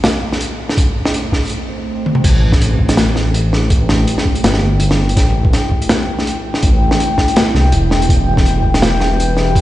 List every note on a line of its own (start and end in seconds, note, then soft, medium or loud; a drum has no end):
0.00 8.10 A3 medium
0.00 2.24 E4 medium
0.00 8.09 C5 medium
0.00 2.24 G5 medium
0.00 snare loud
0.04 snare medium
0.04 closed hi-hat medium
0.33 snare soft
0.41 closed hi-hat medium
0.69 snare medium
0.77 kick loud
0.77 closed hi-hat medium
1.05 snare medium
1.14 closed hi-hat medium
1.32 kick medium
1.32 snare medium
1.43 closed hi-hat soft
1.45 closed hi-hat soft
1.47 closed hi-hat soft
1.49 closed hi-hat soft
2.06 high tom medium
2.15 mid tom medium
2.24 3.69 A1 loud
2.24 kick loud
2.24 closed hi-hat medium
2.24 crash loud
2.49 9.61 E4 medium
2.49 kick loud
2.49 snare soft
2.56 9.61 G5 medium
2.61 closed hi-hat medium
2.79 kick medium
2.89 snare medium
2.89 closed hi-hat medium
2.97 snare loud
2.97 closed hi-hat loud
3.16 snare soft
3.34 closed hi-hat medium
3.53 snare medium
3.70 3.87 A1 loud
3.70 kick loud
3.70 closed hi-hat medium
3.89 4.06 A1 medium
3.89 snare medium
4.08 closed hi-hat medium
4.18 snare medium
4.25 kick medium
4.35 closed hi-hat medium
4.44 5.16 G1 medium
4.44 snare loud
4.44 closed hi-hat loud
4.54 snare medium
4.80 closed hi-hat medium
4.91 snare medium
5.09 closed hi-hat medium
5.17 5.34 A1 loud
5.17 kick loud
5.17 snare soft
5.17 closed hi-hat loud
5.35 5.52 A1 medium
5.45 kick loud
5.53 snare soft
5.53 closed hi-hat medium
5.71 kick medium
5.82 closed hi-hat medium
5.89 snare loud
5.89 snare medium
5.89 closed hi-hat medium
6.19 snare soft
6.27 closed hi-hat medium
6.54 snare medium
6.63 6.80 A1 loud
6.63 kick loud
6.63 closed hi-hat medium
6.81 6.98 A1 medium
6.91 snare medium
7.00 closed hi-hat medium
7.18 kick medium
7.18 snare medium
7.28 closed hi-hat medium
7.36 snare loud
7.36 closed hi-hat medium
7.54 7.74 C2 medium
7.54 snare medium
7.72 7.90 E1 loud
7.72 closed hi-hat medium
7.91 8.08 E1 loud
7.91 snare medium
8.02 closed hi-hat medium
8.09 9.54 E1 loud
8.09 9.61 G3 medium
8.09 kick loud
8.09 closed hi-hat medium
8.37 kick loud
8.37 snare medium
8.46 9.61 B4 medium
8.46 closed hi-hat medium
8.64 kick medium
8.74 snare medium
8.74 closed hi-hat medium
8.82 snare loud
8.82 closed hi-hat medium
9.01 snare medium
9.20 closed hi-hat medium
9.37 snare soft
9.55 9.61 E1 loud
9.55 kick loud
9.55 closed hi-hat medium